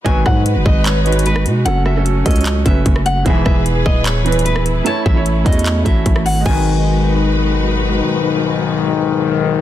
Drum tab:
CC |------------------------------------------------------------------------------------------------|------------------------------------------------------------------------------------------------|------------------------------------------------------------------------------------------------|------------------------------------------------------------------------------------------------|
HH |x-----------------------x-----------------------x-----------x---x---x---x-----------x-----------|x-----------------------x-----------x--x--x--x--x-----------x-----------x-----------x-----------|x-----------------------x-----------------------x-----------x---x---x---x-----------x-----------|x-----------------------x-----------x---x---x---x-----------x-----------x-----------o-----------|
CP |------------------------------------------------x-----------------------------------------------|------------------------------------------------x-----------------------------------------------|------------------------------------------------x-----------------------------------------------|------------------------------------------------x-----------------------------------------------|
SD |------------r-----------------------------------------------------------------r-----------------|------------r-----------------------------------------------------------------r-----------------|------------r-----------------------------------------------------------------r-----------------|------------------------------------------------------------------------------r-----------------|
BD |o-----------o-----------------------o-----------------------------------------------------------|------------------------------------o-----------------------o-----------o-----------------------|o-----------o-----------------------o-----------------------------------------------------------|------------o-----------------------o-----------------------o-----------o-----------------------|

CC |x-----------------------------------------------------------------------------------------------|------------------------------------------------------------------------------------------------|
HH |------------------------------------------------------------------------------------------------|------------------------------------------------------------------------------------------------|
CP |------------------------------------------------------------------------------------------------|------------------------------------------------------------------------------------------------|
SD |------------------------------------------------------------------------------------------------|------------------------------------------------------------------------------------------------|
BD |o-----------------------------------------------------------------------------------------------|------------------------------------------------------------------------------------------------|